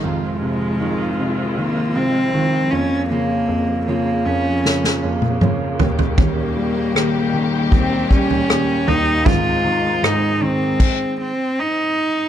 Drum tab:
CC |----------------|----------------|----------------|--------x-------|
SD |----------------|--------oo------|----r-------r---|----r-----------|
T1 |----------------|-----------o----|----------------|----------------|
T2 |----------------|------------o---|----------------|----------------|
FT |----------------|--------------oo|o-------o--o--o-|o---------------|
BD |----------------|----------------|o-------o-o-----|o-------o-------|